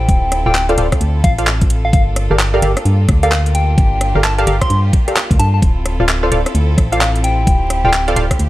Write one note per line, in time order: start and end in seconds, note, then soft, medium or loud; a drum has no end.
0.00 1.90 C4 medium
0.00 1.90 E4 medium
0.00 8.49 F4 medium
0.00 3.74 A4 medium
0.00 0.43 G5 medium
0.08 0.44 D1 loud
0.08 kick loud
0.08 closed hi-hat medium
0.32 cross-stick medium
0.32 closed hi-hat loud
0.46 0.76 D1 loud
0.46 0.52 F4 medium
0.46 0.52 A4 medium
0.46 0.52 C5 medium
0.46 0.52 D5 medium
0.46 0.52 F5 medium
0.46 0.65 G5 medium
0.55 clap loud
0.55 closed hi-hat medium
0.69 0.77 F4 medium
0.69 0.77 A4 medium
0.69 0.77 C5 medium
0.69 0.77 D5 medium
0.69 0.77 F5 medium
0.69 closed hi-hat soft
0.78 0.91 D1 medium
0.78 0.87 F4 medium
0.78 0.87 A4 medium
0.78 0.87 C5 medium
0.78 0.87 D5 medium
0.78 0.87 F5 medium
0.78 closed hi-hat loud
0.92 kick medium
0.92 cross-stick medium
0.92 closed hi-hat medium
1.01 1.22 D2 medium
1.01 closed hi-hat medium
1.24 1.92 A1 medium
1.24 1.33 F5 medium
1.24 kick loud
1.24 closed hi-hat loud
1.38 1.47 F4 medium
1.38 1.47 A4 medium
1.38 1.47 C5 medium
1.38 1.47 D5 medium
1.38 1.44 F5 medium
1.38 1.47 F5 medium
1.38 closed hi-hat medium
1.47 clap loud
1.61 kick loud
1.61 closed hi-hat soft
1.70 closed hi-hat loud
1.85 1.90 F5 medium
1.93 2.28 G1 loud
1.93 5.59 A#3 medium
1.93 5.59 D4 medium
1.93 2.02 F5 medium
1.93 kick loud
1.93 closed hi-hat medium
2.16 cross-stick medium
2.16 closed hi-hat loud
2.31 2.61 G1 loud
2.31 2.36 G4 medium
2.31 2.36 A4 medium
2.31 2.36 A#4 medium
2.31 2.36 D5 medium
2.31 2.36 F5 medium
2.39 clap loud
2.39 closed hi-hat medium
2.54 2.61 G4 medium
2.54 2.61 A4 medium
2.54 2.61 A#4 medium
2.54 2.61 D5 medium
2.54 2.61 F5 loud
2.62 2.75 G1 medium
2.62 2.72 G4 medium
2.62 2.72 A4 medium
2.62 2.72 A#4 medium
2.62 2.72 D5 medium
2.62 2.72 F5 medium
2.62 closed hi-hat loud
2.77 cross-stick medium
2.77 closed hi-hat medium
2.85 3.07 G2 medium
2.85 closed hi-hat medium
3.09 3.76 D2 medium
3.09 kick loud
3.09 cross-stick medium
3.09 closed hi-hat medium
3.23 3.32 G4 medium
3.23 3.32 A4 medium
3.23 3.32 A#4 medium
3.23 3.32 D5 medium
3.23 3.42 F5 medium
3.23 3.32 F5 medium
3.23 closed hi-hat medium
3.32 clap loud
3.46 closed hi-hat soft
3.55 4.12 G5 loud
3.55 closed hi-hat loud
3.78 4.13 G1 loud
3.78 5.61 G4 medium
3.78 kick loud
3.78 closed hi-hat medium
4.01 cross-stick medium
4.01 closed hi-hat medium
4.15 4.45 G1 loud
4.15 4.21 G4 medium
4.15 4.21 A4 medium
4.15 4.21 A#4 medium
4.15 4.21 D5 medium
4.15 4.21 F5 medium
4.24 4.33 A5 medium
4.24 clap loud
4.24 closed hi-hat medium
4.38 4.46 G4 medium
4.38 4.46 A4 medium
4.38 4.46 A#4 medium
4.38 4.46 D5 medium
4.38 4.46 F5 medium
4.38 4.44 A5 medium
4.38 closed hi-hat soft
4.47 4.60 G1 medium
4.47 4.56 G4 medium
4.47 4.56 A4 medium
4.47 4.56 A#4 medium
4.47 4.56 D5 medium
4.47 4.56 F5 medium
4.47 closed hi-hat loud
4.61 4.80 C6 medium
4.61 kick medium
4.61 cross-stick medium
4.61 closed hi-hat medium
4.70 4.91 G2 medium
4.70 closed hi-hat medium
4.93 kick loud
4.93 closed hi-hat medium
5.08 5.17 G4 medium
5.08 5.17 A4 medium
5.08 5.17 A#4 medium
5.08 5.17 D5 medium
5.08 5.17 F5 medium
5.08 closed hi-hat medium
5.16 clap loud
5.31 5.38 D2 medium
5.31 kick loud
5.31 closed hi-hat soft
5.39 5.61 G2 medium
5.39 5.49 A5 medium
5.39 closed hi-hat medium
5.54 5.59 A5 medium
5.62 5.97 D1 loud
5.62 8.49 C4 medium
5.62 8.49 E4 medium
5.62 7.45 A4 medium
5.62 kick loud
5.62 closed hi-hat medium
5.86 cross-stick medium
5.86 closed hi-hat loud
6.00 6.30 D1 loud
6.00 6.05 F4 medium
6.00 6.05 A4 medium
6.00 6.05 C5 medium
6.00 6.06 D5 medium
6.00 6.05 F5 medium
6.09 clap loud
6.09 closed hi-hat medium
6.23 6.30 F4 medium
6.23 6.30 A4 medium
6.23 6.30 C5 medium
6.23 6.30 D5 medium
6.23 6.30 F5 medium
6.32 6.45 D1 medium
6.32 6.41 F4 medium
6.32 6.41 A4 medium
6.32 6.41 C5 medium
6.32 6.41 D5 medium
6.32 6.41 F5 medium
6.32 closed hi-hat loud
6.46 cross-stick medium
6.46 closed hi-hat medium
6.55 6.76 D2 medium
6.55 closed hi-hat medium
6.78 7.46 A1 medium
6.78 kick loud
6.78 cross-stick soft
6.78 closed hi-hat medium
6.92 7.01 F4 medium
6.92 7.01 A4 medium
6.92 7.01 C5 medium
6.92 7.01 D5 medium
6.92 7.01 F5 medium
6.92 7.11 F5 medium
6.92 closed hi-hat medium
7.01 clap loud
7.16 closed hi-hat soft
7.24 7.82 G5 medium
7.24 closed hi-hat loud
7.47 7.82 D1 loud
7.47 8.49 G4 medium
7.47 kick loud
7.47 closed hi-hat medium
7.70 cross-stick medium
7.70 closed hi-hat loud
7.85 8.15 D1 loud
7.85 7.90 F4 medium
7.85 7.90 A4 medium
7.85 7.90 C5 medium
7.85 7.90 D5 medium
7.85 7.90 F5 medium
7.85 8.03 G5 medium
7.93 clap loud
7.93 closed hi-hat medium
8.08 8.15 F4 medium
8.08 8.15 A4 medium
8.08 8.15 C5 medium
8.08 8.15 D5 medium
8.08 8.15 F5 medium
8.08 closed hi-hat soft
8.16 8.29 D1 medium
8.16 8.26 F4 medium
8.16 8.26 A4 medium
8.16 8.26 C5 medium
8.16 8.26 D5 medium
8.16 8.26 F5 medium
8.16 closed hi-hat loud
8.31 kick medium
8.31 cross-stick medium
8.31 closed hi-hat medium
8.39 8.49 D2 medium
8.39 closed hi-hat medium